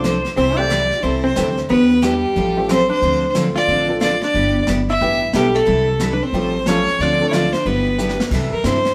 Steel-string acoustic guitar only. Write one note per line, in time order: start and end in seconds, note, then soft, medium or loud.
0.04 0.16 F3 medium
0.04 0.16 C4 medium
0.04 0.16 D4 medium
0.04 0.16 A4 medium
0.37 0.59 C3 medium
0.37 0.59 E3 medium
0.37 0.59 G3 medium
0.37 0.59 C4 medium
0.37 0.59 E4 medium
0.37 0.59 A4 medium
0.69 0.81 C3 medium
0.69 0.82 E3 medium
0.69 0.82 G3 medium
0.69 0.82 C4 medium
0.69 0.82 E4 medium
0.69 0.82 A4 medium
1.03 1.25 C3 medium
1.03 1.25 E3 medium
1.03 1.25 G3 medium
1.03 1.25 C4 medium
1.03 1.25 E4 medium
1.03 1.25 A4 medium
1.36 1.48 C3 medium
1.36 1.48 E3 medium
1.36 1.48 G3 medium
1.36 1.48 C4 medium
1.36 1.48 E4 medium
1.36 1.48 A4 medium
1.69 1.91 E3 medium
1.69 1.91 B3 medium
1.69 1.91 D4 medium
1.69 1.91 G4 medium
2.02 2.14 E3 medium
2.02 2.14 B3 medium
2.02 2.14 D4 medium
2.02 2.15 G4 medium
2.36 2.57 F3 medium
2.36 2.57 G3 medium
2.36 2.58 C#4 medium
2.36 2.58 F4 medium
2.36 2.58 A4 medium
2.69 2.81 F3 medium
2.69 2.81 G3 medium
2.69 2.81 C#4 medium
2.69 2.81 F4 medium
2.69 2.81 A4 medium
3.02 3.24 D3 soft
3.02 3.24 F3 medium
3.02 3.24 C4 medium
3.02 3.24 D4 medium
3.02 3.24 A4 medium
3.35 3.47 D3 medium
3.35 3.47 F3 medium
3.35 3.47 C4 medium
3.35 3.47 D4 medium
3.35 3.47 A4 medium
3.68 3.90 D3 medium
3.68 3.90 F3 medium
3.68 3.90 C4 medium
3.68 3.90 D4 medium
3.68 3.90 A4 medium
4.00 4.12 D3 medium
4.00 4.13 F3 medium
4.00 4.13 C4 medium
4.00 4.13 D4 medium
4.00 4.13 A4 medium
4.35 4.56 G3 medium
4.35 4.56 B3 medium
4.35 4.56 E4 medium
4.35 4.56 G4 medium
4.68 4.79 G3 medium
4.68 4.79 B3 medium
4.68 4.79 E4 medium
4.68 4.80 G4 medium
5.01 5.22 G3 medium
5.01 5.22 B3 medium
5.01 5.23 E4 medium
5.01 5.23 G4 medium
5.34 5.46 G3 medium
5.34 5.46 B3 medium
5.34 5.46 E4 medium
5.34 5.46 G4 medium
5.65 5.88 C3 medium
5.65 5.88 E3 medium
5.65 5.88 G3 medium
5.65 5.88 C4 medium
5.65 5.88 E4 medium
5.65 5.88 A4 medium
6.00 6.12 C3 medium
6.00 6.12 E3 medium
6.00 6.12 G3 medium
6.00 6.12 C4 medium
6.00 6.12 E4 medium
6.00 6.12 A4 medium
6.34 6.55 F3 medium
6.34 6.55 G3 medium
6.34 6.55 C#4 medium
6.34 6.55 F4 medium
6.34 6.55 A4 medium
6.67 6.78 F3 medium
6.67 6.78 G3 medium
6.67 6.78 C#4 medium
6.67 6.79 F4 medium
6.67 6.79 A4 medium
7.00 7.21 D3 medium
7.00 7.21 F3 medium
7.00 7.21 C4 medium
7.00 7.21 D4 medium
7.00 7.21 A4 medium
7.33 7.44 D3 medium
7.33 7.44 F3 medium
7.33 7.45 C4 medium
7.33 7.45 D4 medium
7.33 7.45 A4 medium
7.66 7.87 G3 medium
7.66 7.87 B3 medium
7.66 7.87 E4 medium
7.66 7.87 G4 medium
8.00 8.11 G3 medium
8.00 8.11 B3 medium
8.00 8.11 E4 medium
8.00 8.11 G4 medium
8.33 8.54 C3 medium
8.33 8.54 E3 medium
8.33 8.54 G3 medium
8.33 8.54 C4 medium
8.33 8.54 E4 medium
8.33 8.54 A4 medium
8.66 8.77 C3 medium
8.66 8.77 E3 medium
8.66 8.77 G3 medium
8.66 8.77 C4 medium
8.66 8.77 E4 medium
8.66 8.77 A4 medium